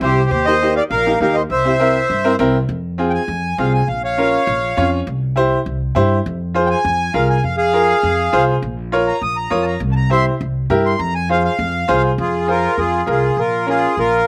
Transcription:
0.01 0.25 C2 loud
0.01 0.18 C4 medium
0.01 0.18 E4 medium
0.01 0.18 G4 medium
0.01 0.30 G4 medium
0.01 0.29 C5 medium
0.30 0.79 D#2 loud
0.30 0.46 G4 medium
0.30 0.45 C5 medium
0.45 0.52 A#3 medium
0.45 0.52 D#4 medium
0.45 0.53 G4 medium
0.45 0.74 C5 medium
0.45 0.73 D#5 loud
0.62 0.77 A#3 medium
0.62 0.78 D#4 medium
0.62 0.78 G4 medium
0.76 0.84 D5 medium
0.76 0.82 F5 medium
0.90 1.15 A#1 loud
0.90 1.19 A#4 medium
0.90 1.19 F5 loud
1.06 1.11 A#3 medium
1.06 1.12 D#4 medium
1.06 1.12 G4 medium
1.20 1.44 D#2 medium
1.20 1.36 A#3 medium
1.20 1.37 D#4 medium
1.20 1.37 G4 medium
1.20 1.35 A#4 medium
1.20 1.36 F5 medium
1.34 1.43 C5 medium
1.34 1.41 D#5 medium
1.50 1.98 C2 medium
1.50 2.36 C5 medium
1.50 2.35 E5 medium
1.65 1.70 C4 medium
1.65 1.71 E4 medium
1.65 1.71 G4 medium
1.80 1.96 C4 medium
1.80 1.96 E4 medium
1.80 1.96 A#4 medium
2.10 2.34 G2 medium
2.24 2.30 C4 medium
2.24 2.30 E4 medium
2.24 2.30 A#4 loud
2.39 2.63 C2 loud
2.39 2.55 C4 loud
2.39 2.55 E4 medium
2.39 2.55 A#4 loud
2.69 3.16 F2 medium
2.98 3.19 C4 medium
2.98 3.20 F4 medium
2.98 3.20 G#4 medium
3.10 3.12 G5 medium
3.15 3.57 G#5 medium
3.28 3.52 F2 medium
3.58 3.82 C2 loud
3.58 3.79 C4 medium
3.58 3.79 F4 medium
3.58 3.80 G#4 medium
3.58 3.73 F5 medium
3.74 3.88 G#5 medium
3.88 4.36 A#1 medium
3.88 4.02 F5 medium
4.04 4.88 C#5 medium
4.04 4.90 F5 medium
4.18 4.38 C#4 medium
4.18 4.39 F4 medium
4.18 4.39 A#4 medium
4.47 4.71 A#1 loud
4.77 5.01 F2 medium
4.77 4.98 C#4 medium
4.77 4.98 F4 medium
4.77 4.98 C#5 medium
5.07 5.54 C2 loud
5.36 5.57 E4 medium
5.36 5.57 G4 medium
5.36 5.58 C5 loud
5.66 5.90 C2 loud
5.95 6.20 G2 loud
5.95 6.16 E4 medium
5.95 6.17 G4 medium
5.95 6.17 C5 loud
6.26 6.73 F2 loud
6.54 6.76 F4 medium
6.54 6.76 G#4 medium
6.54 6.76 C5 loud
6.66 6.68 G5 medium
6.71 7.14 G#5 loud
6.85 7.09 F2 loud
7.14 7.38 C2 loud
7.14 7.35 F4 medium
7.14 7.35 G#4 medium
7.14 7.36 A#4 medium
7.14 7.29 F5 medium
7.29 7.44 G#5 medium
7.44 7.92 F2 medium
7.44 7.56 F5 medium
7.57 8.43 G#4 medium
7.57 8.45 F5 medium
7.73 7.94 F4 medium
7.73 7.95 G#4 medium
7.73 7.95 A#4 medium
8.03 8.27 F2 medium
8.33 8.57 C2 medium
8.33 8.54 F4 medium
8.33 8.54 G#4 medium
8.33 8.54 C5 loud
8.62 9.10 A#1 medium
8.92 9.13 F4 medium
8.92 9.14 A#4 medium
8.92 9.14 C#5 medium
9.08 9.22 A#5 medium
9.22 9.46 A#1 medium
9.22 9.37 D#6 loud
9.37 9.51 A#5 medium
9.50 9.75 F2 medium
9.50 9.72 F4 medium
9.50 9.72 A#4 medium
9.50 9.72 C#5 medium
9.50 9.66 D#6 medium
9.62 9.65 A5 medium
9.67 9.81 A#5 medium
9.80 10.28 C2 loud
9.92 9.94 A5 medium
9.96 10.11 A#5 medium
10.10 10.31 E4 medium
10.10 10.32 G4 medium
10.10 10.32 C5 medium
10.10 10.25 E5 medium
10.10 10.26 C6 medium
10.41 10.64 C2 loud
10.70 10.94 G2 loud
10.70 10.91 E4 medium
10.70 10.91 G4 medium
10.70 10.91 A#4 loud
10.86 11.00 C6 medium
10.99 11.47 F2 loud
10.99 11.14 A#5 medium
11.15 11.29 G#5 medium
11.29 11.50 F4 medium
11.29 11.51 G#4 medium
11.29 11.51 C5 medium
11.29 11.43 F5 loud
11.44 12.02 F5 medium
11.59 11.83 F2 loud
11.88 12.13 C2 medium
11.88 12.09 F4 medium
11.88 12.10 G#4 medium
11.88 12.10 C5 loud
12.18 12.66 F2 medium
12.18 12.47 F4 medium
12.18 12.50 G#4 medium
12.48 12.69 F4 medium
12.48 12.76 F4 medium
12.48 12.69 G#4 medium
12.48 12.80 A#4 loud
12.48 12.69 C5 medium
12.78 13.02 F2 medium
12.78 13.06 F4 medium
12.78 13.09 G#4 medium
13.06 13.31 C2 loud
13.06 13.28 F4 medium
13.06 13.37 F4 medium
13.06 13.28 G#4 medium
13.06 13.28 A#4 medium
13.10 13.40 G#4 medium
13.37 13.85 A#1 medium
13.37 13.66 F4 medium
13.37 13.69 A#4 medium
13.66 13.88 C#4 medium
13.66 13.88 F4 medium
13.66 13.96 F4 medium
13.66 13.99 G#4 medium
13.66 13.88 A#4 medium
13.97 14.21 A#1 medium
13.97 14.25 F4 medium
13.97 14.26 A#4 loud

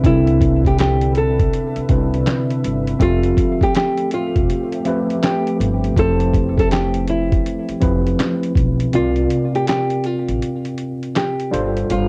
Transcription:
0.00 1.48 C2 loud
0.00 0.03 C3 medium
0.00 1.30 C3 medium
0.00 2.96 D3 medium
0.00 0.04 C4 medium
0.00 1.30 C4 medium
0.00 0.04 D4 medium
0.00 2.97 D4 medium
0.00 0.05 E4 medium
0.00 1.91 B4 medium
0.00 2.96 B4 medium
0.00 8.89 E5 medium
0.00 kick loud
0.04 1.31 D4 medium
0.04 1.31 E4 medium
0.04 0.62 E4 loud
0.04 1.31 A4 medium
0.04 closed hi-hat medium
0.27 closed hi-hat soft
0.41 kick medium
0.41 closed hi-hat medium
0.65 0.78 G4 medium
0.65 kick medium
0.65 closed hi-hat soft
0.78 1.13 G4 medium
0.78 snare loud
0.78 clap medium
0.78 closed hi-hat medium
1.01 closed hi-hat medium
1.15 2.97 A4 medium
1.15 closed hi-hat medium
1.39 kick loud
1.39 closed hi-hat soft
1.53 closed hi-hat medium
1.76 muted upright bass stroke medium
1.76 closed hi-hat medium
1.89 2.20 C2 medium
1.89 2.86 C3 medium
1.89 2.87 C4 medium
1.89 2.87 D4 medium
1.89 2.87 E4 medium
1.89 2.88 B4 medium
1.89 kick medium
1.89 closed hi-hat medium
2.14 closed hi-hat soft
2.27 snare loud
2.27 clap medium
2.27 closed hi-hat medium
2.50 closed hi-hat soft
2.64 2.94 G1 medium
2.64 closed hi-hat medium
2.87 closed hi-hat medium
2.99 3.31 F1 loud
2.99 4.26 F3 medium
2.99 8.89 F3 medium
2.99 8.89 A3 medium
2.99 4.26 C4 medium
2.99 3.58 F4 loud
2.99 8.89 G4 medium
2.99 4.27 G4 medium
2.99 4.27 A4 medium
2.99 4.26 E5 medium
2.99 kick loud
2.99 closed hi-hat medium
3.23 closed hi-hat soft
3.37 kick medium
3.37 closed hi-hat medium
3.61 3.74 G4 medium
3.61 kick medium
3.61 closed hi-hat soft
3.75 4.09 G4 medium
3.75 snare loud
3.75 clap medium
3.75 closed hi-hat medium
3.97 closed hi-hat medium
4.11 5.20 F4 medium
4.11 closed hi-hat medium
4.36 4.47 E1 medium
4.36 kick loud
4.36 closed hi-hat medium
4.50 closed hi-hat medium
4.72 closed hi-hat soft
4.85 5.83 F3 medium
4.85 5.83 C4 medium
4.85 5.84 G4 medium
4.85 5.84 B4 medium
4.85 5.83 E5 medium
4.85 closed hi-hat medium
5.10 closed hi-hat soft
5.23 5.57 G4 medium
5.23 snare loud
5.23 clap loud
5.23 closed hi-hat medium
5.47 closed hi-hat soft
5.60 5.91 G1 loud
5.60 closed hi-hat medium
5.84 closed hi-hat soft
5.96 7.41 F1 loud
5.96 7.23 F3 medium
5.96 7.23 C4 medium
5.96 7.23 E4 medium
5.96 7.24 G4 medium
5.96 6.55 A4 medium
5.96 7.24 C5 medium
5.96 kick loud
5.96 closed hi-hat medium
6.20 closed hi-hat medium
6.34 kick medium
6.34 closed hi-hat medium
6.58 6.71 A4 medium
6.58 kick loud
6.58 snare soft
6.58 closed hi-hat soft
6.71 7.05 G4 medium
6.71 snare loud
6.71 clap medium
6.71 closed hi-hat medium
6.94 closed hi-hat medium
7.07 8.90 E4 medium
7.07 closed hi-hat medium
7.32 kick loud
7.32 closed hi-hat medium
7.46 closed hi-hat medium
7.69 muted upright bass stroke soft
7.69 closed hi-hat medium
7.80 8.13 F1 medium
7.80 8.78 F3 medium
7.80 8.79 C4 medium
7.80 8.79 E4 medium
7.80 8.79 G4 medium
7.80 8.80 B4 medium
7.80 kick loud
7.80 closed hi-hat medium
8.07 closed hi-hat soft
8.20 snare loud
8.20 clap medium
8.20 closed hi-hat medium
8.43 closed hi-hat soft
8.55 8.87 B1 medium
8.55 kick loud
8.55 closed hi-hat medium
8.80 closed hi-hat medium
8.93 9.24 C2 medium
8.93 10.19 C3 medium
8.93 10.19 C4 medium
8.93 10.20 F4 medium
8.93 9.51 F4 loud
8.93 10.20 A#4 medium
8.93 10.20 D5 medium
8.93 closed hi-hat medium
9.16 closed hi-hat soft
9.30 closed hi-hat medium
9.55 9.67 G4 medium
9.55 closed hi-hat soft
9.67 10.06 G4 medium
9.67 snare loud
9.67 clap medium
9.67 closed hi-hat medium
9.90 closed hi-hat soft
10.04 11.12 F4 medium
10.04 closed hi-hat medium
10.28 10.39 A1 medium
10.28 closed hi-hat medium
10.42 closed hi-hat medium
10.65 closed hi-hat soft
10.78 closed hi-hat medium
11.03 closed hi-hat soft
11.16 11.49 G4 medium
11.16 snare loud
11.16 clap medium
11.16 closed hi-hat medium
11.40 closed hi-hat soft
11.51 11.83 G1 medium
11.51 12.09 G3 medium
11.51 12.09 D4 medium
11.51 12.09 F4 medium
11.51 12.09 A4 medium
11.51 12.09 C5 medium
11.51 closed hi-hat medium
11.77 closed hi-hat medium
11.90 12.09 G1 medium
11.90 12.09 F4 medium
11.90 closed hi-hat medium

